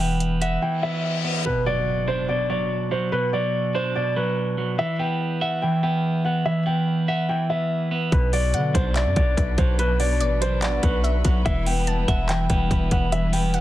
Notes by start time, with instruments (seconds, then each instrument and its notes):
Already playing: 808-style bass E1, clean electric guitar E3
0.00 clean electric guitar B3, grand piano G5
0.20 closed hi-hat
0.41 clean electric guitar E5, grand piano F#5, closed hi-hat
0.62 clean electric guitar E3, grand piano G5, reverse cymbal
0.83 clean electric guitar B3, grand piano E5
1.25 clean electric guitar B3
1.46 clean electric guitar B2, grand piano B4, impact
1.66 clean electric guitar F#3, grand piano D5
2.08 clean electric guitar D4, grand piano C5
2.29 clean electric guitar B2, grand piano D5
2.50 clean electric guitar F#3, grand piano D5
2.91 clean electric guitar F#3, grand piano C5
3.12 clean electric guitar B2, grand piano B4
3.33 clean electric guitar F#3, grand piano D5
3.75 clean electric guitar D4, grand piano C5
3.96 clean electric guitar B2, grand piano D5
4.16 clean electric guitar F#3, grand piano B4
4.58 clean electric guitar F#3
4.78 clean electric guitar E3, grand piano E5
4.99 clean electric guitar B3, grand piano G5
5.41 clean electric guitar E5, grand piano F#5
5.62 clean electric guitar E3, grand piano G5
5.83 clean electric guitar B3, grand piano G5
6.25 clean electric guitar B3, grand piano F#5
6.46 clean electric guitar E3, grand piano E5
6.66 clean electric guitar B3, grand piano G5
7.08 clean electric guitar E5, grand piano F#5
7.29 clean electric guitar E3, grand piano G5
7.50 clean electric guitar B3, grand piano E5
7.91 clean electric guitar B3
8.12 808-style bass B1, clean electric guitar B2, string section F#3 B3 D4 B4, grand piano B4, kick, closed hi-hat
8.33 clean electric guitar F#3, grand piano D5, open hi-hat
8.54 808-style bass D3, synth pluck F#5, closed hi-hat
8.74 808-style bass B1, clean electric guitar D4, grand piano C5, kick, closed hi-hat
8.96 clean electric guitar B2, grand piano D5, synth pluck E5, clap, closed hi-hat
9.06 808-style bass F#2
9.16 808-style bass B1, clean electric guitar F#3, grand piano D5, kick, closed hi-hat
9.37 808-style bass B1, kick, closed hi-hat
9.58 808-style bass B1, clean electric guitar F#3, grand piano C5, kick, closed hi-hat
9.79 clean electric guitar B2, grand piano B4, closed hi-hat
10.00 clean electric guitar F#3, grand piano D5, open hi-hat
10.21 808-style bass A1, synth pluck D5, closed hi-hat
10.41 clean electric guitar D4, grand piano C5, closed hi-hat
10.62 clean electric guitar B2, grand piano D5, synth pluck F#5, clap, closed hi-hat
10.83 808-style bass B1, clean electric guitar F#3, grand piano B4, kick, closed hi-hat
11.04 synth pluck E5, closed hi-hat
11.25 808-style bass B1, clean electric guitar F#3, synth pluck F#5, kick, closed hi-hat
11.45 808-style bass E1, clean electric guitar E3, string section G3 E4, grand piano E5, kick, closed hi-hat
11.66 clean electric guitar B3, grand piano G5, open hi-hat
11.87 synth pluck A5, closed hi-hat
12.08 808-style bass E1, clean electric guitar E5, grand piano F#5, kick, closed hi-hat
12.29 clean electric guitar E3, grand piano G5, synth pluck G5, clap, closed hi-hat
12.50 808-style bass E1, clean electric guitar B3, grand piano G5, kick, closed hi-hat
12.71 808-style bass E1, kick, closed hi-hat
12.91 808-style bass E1, clean electric guitar B3, grand piano F#5, kick, closed hi-hat
13.12 clean electric guitar E3, grand piano E5, closed hi-hat
13.33 clean electric guitar B3, grand piano G5, open hi-hat
13.54 synth pluck F#5, closed hi-hat